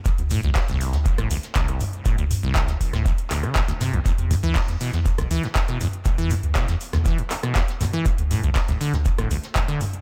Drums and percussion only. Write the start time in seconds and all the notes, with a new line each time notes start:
0.05 kick, closed hi-hat, shaker
0.18 closed hi-hat
0.30 mid tom, open hi-hat, shaker
0.43 closed hi-hat
0.55 kick, snare, clap, closed hi-hat, open hi-hat
0.68 snare, closed hi-hat
0.81 open hi-hat, shaker
0.93 snare, closed hi-hat
1.06 kick, closed hi-hat, shaker
1.18 cross-stick, closed hi-hat
1.30 open hi-hat, shaker
1.43 snare, closed hi-hat
1.55 kick, snare, clap, closed hi-hat, shaker
1.68 closed hi-hat
1.80 mid tom, open hi-hat, shaker
1.93 closed hi-hat
2.06 kick, closed hi-hat, shaker
2.18 closed hi-hat
2.31 mid tom, open hi-hat, shaker
2.43 closed hi-hat
2.55 kick, snare, clap, closed hi-hat, shaker
2.67 snare, closed hi-hat
2.81 kick, open hi-hat, shaker
2.93 cross-stick, snare, closed hi-hat
3.06 kick, closed hi-hat, shaker
3.18 closed hi-hat
3.31 cross-stick, snare, clap, open hi-hat, shaker
3.43 cross-stick, closed hi-hat
3.56 kick, snare, clap, closed hi-hat, shaker
3.68 snare, closed hi-hat
3.80 snare, mid tom, open hi-hat, shaker
3.93 closed hi-hat
4.06 kick, closed hi-hat, shaker
4.18 closed hi-hat
4.31 mid tom, open hi-hat, shaker
4.43 closed hi-hat
4.55 kick, snare, clap, closed hi-hat, open hi-hat
4.67 snare, closed hi-hat
4.80 open hi-hat, shaker
4.93 snare, closed hi-hat
5.06 kick, closed hi-hat, shaker
5.18 cross-stick, closed hi-hat
5.31 open hi-hat, shaker
5.43 snare, closed hi-hat
5.55 kick, snare, clap, closed hi-hat, shaker
5.68 closed hi-hat
5.80 mid tom, open hi-hat, shaker
5.93 closed hi-hat
6.05 kick, closed hi-hat, shaker
6.18 closed hi-hat
6.30 mid tom, open hi-hat, shaker
6.43 closed hi-hat
6.55 kick, snare, clap, closed hi-hat, shaker
6.68 snare, closed hi-hat
6.81 open hi-hat, shaker
6.93 cross-stick, snare, closed hi-hat
7.05 kick, closed hi-hat, shaker
7.18 closed hi-hat
7.31 cross-stick, snare, clap, open hi-hat, shaker
7.43 cross-stick, closed hi-hat
7.55 kick, snare, clap, closed hi-hat, shaker
7.68 snare, closed hi-hat
7.81 snare, mid tom, open hi-hat, shaker
7.93 closed hi-hat
8.06 kick, closed hi-hat, shaker
8.18 closed hi-hat
8.31 mid tom, open hi-hat, shaker
8.43 closed hi-hat
8.55 kick, snare, clap, closed hi-hat, open hi-hat
8.68 snare, closed hi-hat
8.81 open hi-hat, shaker
8.93 snare, closed hi-hat
9.05 kick, closed hi-hat, shaker
9.18 cross-stick, closed hi-hat
9.31 open hi-hat, shaker
9.43 snare, closed hi-hat
9.55 kick, snare, clap, closed hi-hat, shaker
9.68 closed hi-hat
9.81 mid tom, open hi-hat, shaker
9.93 closed hi-hat